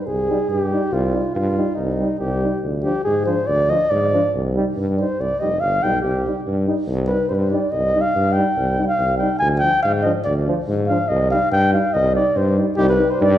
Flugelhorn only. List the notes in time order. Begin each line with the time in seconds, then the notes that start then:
0.00 B4
0.06 G#4
0.49 G#4
0.60 G4
0.93 F4
1.35 F4
1.75 D#4
2.19 G4
2.83 G4
3.04 G#4
3.26 C5
3.47 D5
3.70 D#5
3.90 D5
5.00 C5
5.21 D5
5.40 D#5
5.61 F5
5.83 G5
6.01 G4
7.07 B4
7.29 C5
7.34 B4
7.39 C5
7.49 D5
7.71 D#5
8.01 F5
8.33 G5
8.87 F5
9.18 G5
9.39 G#5
9.59 G5
9.83 F5
10.02 D#5
10.24 D5
10.87 F5
11.08 D#5
11.31 F5
11.52 G5
11.73 F5
11.93 D#5
12.15 D5
12.37 C5
12.77 G4
12.89 B4
13.11 C5
13.22 D5